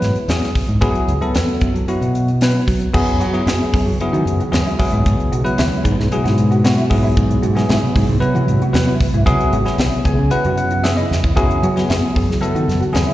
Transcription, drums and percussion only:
0.02 snare soft
0.02 closed hi-hat medium
0.16 closed hi-hat soft
0.29 snare loud
0.29 closed hi-hat medium
0.42 snare soft
0.42 closed hi-hat soft
0.55 kick medium
0.55 open hi-hat medium
0.69 closed hi-hat soft
0.81 kick medium
0.81 closed hi-hat medium
0.95 closed hi-hat soft
1.08 closed hi-hat medium
1.22 closed hi-hat soft
1.35 snare loud
1.35 closed hi-hat medium
1.48 closed hi-hat soft
1.61 kick medium
1.61 closed hi-hat medium
1.76 closed hi-hat soft
1.88 closed hi-hat medium
2.02 closed hi-hat soft
2.15 closed hi-hat medium
2.28 closed hi-hat soft
2.41 snare medium
2.41 closed hi-hat medium
2.55 closed hi-hat soft
2.68 kick medium
2.68 open hi-hat medium
2.82 closed hi-hat soft
2.94 kick medium
2.94 crash medium
3.08 closed hi-hat soft
3.21 closed hi-hat medium
3.34 closed hi-hat soft
3.47 snare loud
3.47 closed hi-hat medium
3.74 kick medium
3.74 open hi-hat medium
4.00 closed hi-hat medium
4.14 closed hi-hat soft
4.27 closed hi-hat medium
4.40 closed hi-hat soft
4.53 snare loud
4.53 closed hi-hat medium
4.67 closed hi-hat soft
4.80 kick medium
4.80 open hi-hat medium
4.93 closed hi-hat soft
5.06 kick medium
5.06 closed hi-hat medium
5.20 closed hi-hat soft
5.33 closed hi-hat medium
5.46 closed hi-hat soft
5.58 snare loud
5.58 closed hi-hat medium
5.72 closed hi-hat soft
5.85 kick medium
5.85 closed hi-hat medium
6.00 snare soft
6.12 closed hi-hat medium
6.26 snare soft
6.26 closed hi-hat soft
6.38 closed hi-hat medium
6.52 closed hi-hat soft
6.65 snare loud
6.65 closed hi-hat medium
6.78 closed hi-hat soft
6.91 kick medium
6.91 open hi-hat medium
7.17 kick loud
7.17 closed hi-hat medium
7.30 closed hi-hat soft
7.43 closed hi-hat medium
7.57 snare soft
7.57 closed hi-hat soft
7.69 snare loud
7.69 closed hi-hat medium
7.96 kick medium
7.96 open hi-hat medium
8.22 closed hi-hat medium
8.36 closed hi-hat soft
8.48 closed hi-hat medium
8.62 closed hi-hat soft
8.74 snare loud
8.74 closed hi-hat medium
8.88 closed hi-hat soft
9.01 kick medium
9.01 open hi-hat medium
9.14 closed hi-hat soft
9.27 kick loud
9.27 closed hi-hat medium
9.40 closed hi-hat soft
9.53 closed hi-hat medium
9.66 snare soft
9.66 closed hi-hat soft
9.78 snare loud
9.78 closed hi-hat medium
9.92 closed hi-hat soft
10.05 kick medium
10.05 closed hi-hat medium
10.31 closed hi-hat medium
10.44 closed hi-hat soft
10.57 closed hi-hat medium
10.71 closed hi-hat soft
10.84 snare loud
10.84 closed hi-hat medium
10.98 closed hi-hat soft
11.12 snare medium
11.24 kick medium
11.37 kick medium
11.37 closed hi-hat medium
11.51 closed hi-hat soft
11.63 closed hi-hat medium
11.77 snare soft
11.77 closed hi-hat soft
11.90 snare loud
11.90 closed hi-hat medium
12.16 kick medium
12.16 open hi-hat medium
12.31 snare soft
12.43 closed hi-hat medium
12.56 closed hi-hat soft
12.69 snare soft
12.69 closed hi-hat medium
12.82 closed hi-hat soft
12.95 snare loud
12.95 closed hi-hat medium
13.09 closed hi-hat soft

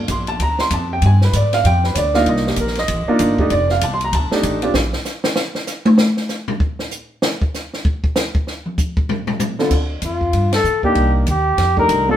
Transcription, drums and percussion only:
0.08 kick soft
0.08 hi-hat pedal medium
0.08 ride medium
0.27 ride soft
0.40 kick soft
0.40 ride medium
0.59 snare medium
0.70 kick soft
0.70 hi-hat pedal medium
0.70 ride medium
1.02 kick soft
1.02 ride medium
1.21 snare soft
1.33 kick soft
1.33 hi-hat pedal medium
1.33 ride medium
1.53 snare soft
1.53 ride soft
1.64 kick soft
1.64 ride medium
1.84 snare soft
1.95 kick soft
1.95 hi-hat pedal medium
1.95 ride medium
2.14 snare soft
2.26 kick soft
2.26 ride medium
2.36 snare soft
2.47 snare soft
2.56 kick soft
2.56 hi-hat pedal medium
2.56 ride medium
2.67 snare soft
2.75 snare soft
2.75 ride soft
2.88 kick soft
2.88 ride medium
3.19 kick soft
3.19 hi-hat pedal medium
3.19 ride medium
3.38 kick medium
3.50 kick soft
3.50 ride medium
3.69 snare soft
3.81 kick soft
3.81 hi-hat pedal medium
3.81 ride medium
4.01 ride medium
4.13 kick soft
4.13 ride medium
4.31 snare medium
4.43 kick soft
4.43 hi-hat pedal medium
4.43 ride medium
4.62 ride soft
4.74 snare medium
4.93 snare soft
5.05 snare soft
5.05 hi-hat pedal medium
5.24 snare medium
5.36 snare loud
5.55 snare medium
5.67 snare soft
5.67 hi-hat pedal medium
5.86 high tom loud
5.98 snare medium
6.17 snare soft
6.29 snare soft
6.29 hi-hat pedal medium
6.48 floor tom medium
6.60 kick medium
6.79 snare soft
6.91 hi-hat pedal medium
7.22 snare loud
7.42 kick medium
7.54 snare soft
7.54 hi-hat pedal medium
7.74 snare soft
7.85 kick medium
8.04 kick medium
8.16 snare loud
8.16 hi-hat pedal medium
8.35 kick medium
8.47 snare soft
8.66 mid tom soft
8.78 kick medium
8.78 hi-hat pedal medium
8.97 kick medium
9.09 floor tom loud
9.27 floor tom loud
9.40 floor tom loud
9.40 hi-hat pedal medium
9.59 snare soft
9.71 kick medium
9.71 crash medium
10.02 kick soft
10.02 hi-hat pedal medium
10.02 ride medium
10.21 kick soft
10.33 kick soft
10.33 ride medium
10.53 snare medium
10.53 ride medium
10.65 hi-hat pedal medium
10.83 kick soft
10.95 kick soft
10.95 ride soft
11.27 kick soft
11.27 hi-hat pedal medium
11.27 ride medium
11.58 kick soft
11.58 snare soft
11.58 ride medium
11.77 kick soft
11.89 kick soft
11.89 hi-hat pedal medium
11.89 ride medium

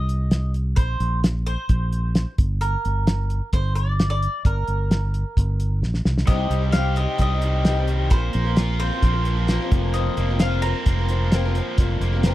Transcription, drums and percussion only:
0.09 closed hi-hat medium
0.31 snare medium
0.31 closed hi-hat medium
0.54 closed hi-hat medium
0.77 kick loud
0.77 closed hi-hat medium
1.00 closed hi-hat medium
1.24 snare loud
1.24 closed hi-hat medium
1.47 closed hi-hat medium
1.69 kick medium
1.69 closed hi-hat medium
1.93 closed hi-hat medium
2.15 snare medium
2.15 closed hi-hat medium
2.38 kick loud
2.38 closed hi-hat medium
2.62 closed hi-hat medium
2.85 closed hi-hat medium
3.07 snare loud
3.07 closed hi-hat medium
3.30 closed hi-hat medium
3.53 kick medium
3.53 closed hi-hat medium
3.76 closed hi-hat medium
4.00 snare medium
4.00 closed hi-hat medium
4.23 closed hi-hat medium
4.45 kick loud
4.45 closed hi-hat medium
4.68 closed hi-hat soft
4.91 snare loud
4.91 closed hi-hat medium
5.14 closed hi-hat medium
5.37 kick medium
5.37 closed hi-hat medium
5.60 closed hi-hat medium
5.83 snare soft
5.94 snare medium
6.05 snare medium
6.18 snare medium
6.27 kick loud
6.27 closed hi-hat medium
6.27 crash medium
6.51 closed hi-hat medium
6.73 snare loud
6.73 closed hi-hat medium
6.96 closed hi-hat medium
7.18 kick medium
7.18 closed hi-hat medium
7.42 closed hi-hat medium
7.65 snare loud
7.65 closed hi-hat medium
7.88 closed hi-hat medium
8.10 kick loud
8.10 closed hi-hat medium
8.33 closed hi-hat medium
8.57 snare loud
8.57 closed hi-hat medium
8.80 closed hi-hat soft
9.02 kick medium
9.02 closed hi-hat medium
9.25 closed hi-hat medium
9.48 snare medium
9.48 closed hi-hat medium
9.72 kick loud
9.72 closed hi-hat medium
9.94 closed hi-hat medium
10.17 closed hi-hat medium
10.39 snare loud
10.39 closed hi-hat medium
10.63 closed hi-hat medium
10.86 kick medium
10.86 closed hi-hat medium
11.09 closed hi-hat medium
11.32 snare loud
11.32 closed hi-hat medium
11.55 closed hi-hat medium
11.78 kick loud
11.78 closed hi-hat medium
12.02 closed hi-hat medium
12.23 snare loud
12.23 closed hi-hat medium

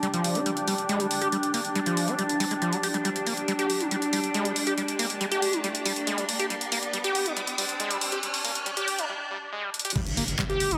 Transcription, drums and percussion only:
0.03 closed hi-hat medium
0.14 closed hi-hat medium
0.24 open hi-hat loud
0.35 closed hi-hat medium
0.46 closed hi-hat medium
0.57 closed hi-hat medium
0.68 open hi-hat loud
0.78 closed hi-hat medium
0.89 closed hi-hat medium
1.00 closed hi-hat medium
1.11 open hi-hat loud
1.22 closed hi-hat medium
1.32 closed hi-hat medium
1.43 closed hi-hat medium
1.54 open hi-hat loud
1.65 closed hi-hat medium
1.75 closed hi-hat medium
1.86 closed hi-hat medium
1.97 open hi-hat loud
2.08 closed hi-hat medium
2.19 closed hi-hat medium
2.29 closed hi-hat medium
2.40 open hi-hat loud
2.51 closed hi-hat medium
2.62 closed hi-hat medium
2.73 closed hi-hat medium
2.83 open hi-hat loud
2.94 closed hi-hat medium
3.05 closed hi-hat medium
3.16 closed hi-hat medium
3.27 open hi-hat loud
3.37 closed hi-hat medium
3.48 closed hi-hat medium
3.59 closed hi-hat medium
3.70 open hi-hat loud
3.80 closed hi-hat medium
3.91 closed hi-hat medium
4.02 closed hi-hat medium
4.13 open hi-hat loud
4.24 closed hi-hat medium
4.34 closed hi-hat medium
4.45 closed hi-hat medium
4.56 open hi-hat loud
4.67 closed hi-hat medium
4.78 closed hi-hat medium
4.88 closed hi-hat medium
4.99 open hi-hat loud
5.10 closed hi-hat medium
5.21 closed hi-hat medium
5.32 closed hi-hat medium
5.42 open hi-hat loud
5.53 closed hi-hat medium
5.64 closed hi-hat medium
5.75 closed hi-hat medium
5.86 open hi-hat loud
5.96 closed hi-hat medium
6.07 closed hi-hat medium
6.18 closed hi-hat medium
6.29 open hi-hat loud
6.39 closed hi-hat medium
6.50 closed hi-hat medium
6.61 closed hi-hat medium
6.72 open hi-hat loud
6.83 closed hi-hat medium
6.93 closed hi-hat medium
7.04 closed hi-hat medium
7.15 open hi-hat loud
7.26 closed hi-hat medium
7.37 closed hi-hat medium
7.47 closed hi-hat medium
7.58 open hi-hat loud
7.69 closed hi-hat medium
7.80 closed hi-hat medium
7.91 closed hi-hat medium
8.01 open hi-hat loud
8.12 closed hi-hat medium
8.23 closed hi-hat medium
8.34 open hi-hat medium
8.45 open hi-hat loud
8.55 closed hi-hat medium
8.66 closed hi-hat medium
8.77 closed hi-hat medium
8.88 open hi-hat loud
8.99 closed hi-hat medium
9.74 closed hi-hat medium
9.79 closed hi-hat medium
9.85 closed hi-hat medium
9.90 closed hi-hat medium
9.96 kick loud
9.96 crash loud
10.06 closed hi-hat medium
10.17 open hi-hat loud
10.28 closed hi-hat medium
10.39 kick loud
10.39 clap loud
10.39 closed hi-hat medium
10.50 closed hi-hat medium
10.60 open hi-hat loud
10.71 closed hi-hat medium

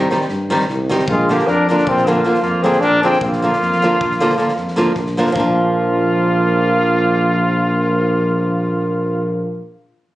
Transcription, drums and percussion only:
0.12 snare soft
0.21 snare soft
0.29 snare soft
0.50 snare soft
0.59 snare soft
0.69 snare soft
0.90 snare soft
0.99 snare soft
1.08 kick medium
1.29 snare soft
1.39 snare soft
1.47 snare soft
1.69 snare soft
1.78 snare soft
1.87 kick medium
1.97 snare soft
2.06 snare soft
2.25 snare soft
2.34 snare soft
2.42 snare soft
2.64 snare soft
2.73 snare soft
2.81 snare soft
3.03 snare soft
3.13 snare soft
3.21 kick medium
3.32 snare soft
3.43 snare soft
3.53 snare soft
3.62 snare soft
3.72 snare soft
3.82 snare soft
4.01 kick medium
4.11 snare soft
4.21 snare soft
4.29 snare soft
4.38 snare soft
4.48 snare soft
4.56 snare soft
4.68 snare soft
4.78 snare soft
4.95 kick medium
4.95 snare soft
5.06 snare soft
5.17 snare soft
5.26 snare soft
5.36 kick medium

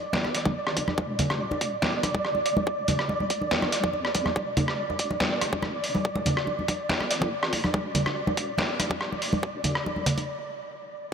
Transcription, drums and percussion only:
0.13 snare loud
0.13 high conga medium
0.24 cross-stick soft
0.24 muted conga soft
0.35 snare soft
0.35 closed hi-hat medium
0.45 kick loud
0.45 muted conga medium
0.45 high conga medium
0.67 cross-stick medium
0.77 kick medium
0.77 closed hi-hat medium
0.77 muted conga medium
0.88 cross-stick soft
0.88 high conga loud
0.98 kick loud
0.98 muted conga medium
1.19 closed hi-hat medium
1.19 high conga loud
1.19 low conga medium
1.30 cross-stick medium
1.30 muted conga soft
1.51 muted conga medium
1.51 high conga medium
1.61 kick medium
1.61 closed hi-hat medium
1.82 snare loud
1.82 muted conga soft
1.82 high conga loud
2.03 cross-stick medium
2.03 closed hi-hat medium
2.03 muted conga medium
2.14 kick loud
2.14 high conga medium
2.25 cross-stick medium
2.35 muted conga soft
2.46 closed hi-hat medium
2.57 muted conga medium
2.57 high conga loud
2.67 kick loud
2.88 closed hi-hat medium
2.88 muted conga medium
2.88 high conga medium
2.88 low conga medium
2.99 cross-stick medium
3.09 muted conga medium
3.20 high conga medium
3.30 kick medium
3.30 closed hi-hat medium
3.41 muted conga medium
3.51 snare loud
3.51 high conga medium
3.62 cross-stick soft
3.62 muted conga medium
3.72 snare soft
3.72 closed hi-hat medium
3.84 kick loud
3.84 high conga medium
3.93 muted conga soft
4.05 cross-stick medium
4.15 kick medium
4.15 closed hi-hat medium
4.15 muted conga medium
4.26 cross-stick soft
4.26 high conga loud
4.36 kick loud
4.36 muted conga medium
4.57 closed hi-hat medium
4.57 muted conga medium
4.57 high conga medium
4.57 low conga medium
4.68 cross-stick medium
4.90 muted conga medium
4.90 high conga medium
4.99 kick medium
4.99 closed hi-hat medium
5.11 muted conga medium
5.20 snare loud
5.20 high conga medium
5.41 cross-stick medium
5.41 closed hi-hat medium
5.41 muted conga soft
5.53 kick loud
5.53 high conga medium
5.62 cross-stick medium
5.62 muted conga medium
5.84 open hi-hat medium
5.95 muted conga medium
5.95 high conga loud
6.05 kick loud
6.16 muted conga medium
6.26 closed hi-hat medium
6.26 high conga medium
6.26 low conga medium
6.37 cross-stick medium
6.47 muted conga soft
6.59 high conga medium
6.68 kick medium
6.68 closed hi-hat medium
6.68 muted conga medium
6.89 snare loud
6.89 high conga medium
7.00 cross-stick medium
7.00 muted conga soft
7.11 snare soft
7.11 closed hi-hat medium
7.21 kick loud
7.21 muted conga medium
7.21 high conga medium
7.43 cross-stick medium
7.53 kick medium
7.53 open hi-hat medium
7.53 muted conga medium
7.64 cross-stick medium
7.64 high conga loud
7.74 kick loud
7.74 muted conga medium
7.95 closed hi-hat medium
7.95 high conga medium
7.95 low conga medium
8.06 cross-stick medium
8.06 muted conga medium
8.27 muted conga medium
8.27 high conga medium
8.37 kick medium
8.37 closed hi-hat medium
8.58 snare loud
8.58 muted conga medium
8.58 high conga medium
8.80 cross-stick medium
8.80 closed hi-hat medium
8.80 muted conga medium
8.90 kick loud
8.90 high conga medium
9.01 cross-stick medium
9.12 muted conga soft
9.22 open hi-hat loud
9.33 muted conga medium
9.33 high conga medium
9.43 kick loud
9.64 closed hi-hat medium
9.64 muted conga medium
9.64 high conga medium
9.64 low conga medium
9.75 cross-stick medium
9.86 muted conga medium
9.96 high conga medium
10.06 kick medium
10.06 closed hi-hat medium
10.06 low conga medium
10.18 closed hi-hat soft
10.18 muted conga medium

